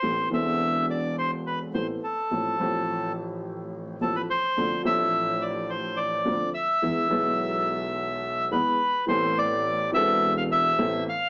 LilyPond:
<<
  \new Staff \with { instrumentName = "Bandoneon" } { \time 4/4 \key a \minor \tempo 4 = 106 c''8 e''4 d''8 c''8 b'8 c''8 a'8~ | a'4. r4. a'16 b'16 c''8~ | c''8 e''4 d''8 c''8 d''4 e''8~ | e''2. b'4 |
c''8 d''4 e''8. f''16 e''4 f''8 | }
  \new Staff \with { instrumentName = "Grand piano" } { \clef bass \time 4/4 \key a \minor <a,, a, e b c' a'>8 <e,, e, e b c' a'>2~ <e,, e, e b c' a'>8 <a,, a, e b c' a'>8 r8 | <a,, a, f a c' a'>8 <a,, a, f a c' a'>2~ <a,, a, f a c' a'>8 <a,, a, f a c' a'>8 r8 | <d, d f c' d' a'>8 <a,, a, f c' d' a'>2~ <a,, a, f c' d' a'>8 <d, d f c' d' a'>8 r8 | <e, e gis b gis'>8 <b,, b, e gis b gis'>2~ <b,, b, e gis b gis'>8 <e, e gis b gis'>8 r8 |
<a,, a, e b c' a'>4. <e,, e, e b c' a'>4. <a,, a, e b c' a'>8 r8 | }
  \new Staff \with { instrumentName = "Double bass" } { \clef bass \time 4/4 \key a \minor a,,8 e,,2~ e,,8 a,,8 r8 | a,,8 a,,2~ a,,8 a,,8 r8 | d,8 a,,2~ a,,8 d,8 r8 | e,8 b,,2~ b,,8 e,8 r8 |
a,,4. e,,4. a,,8 r8 | }
>>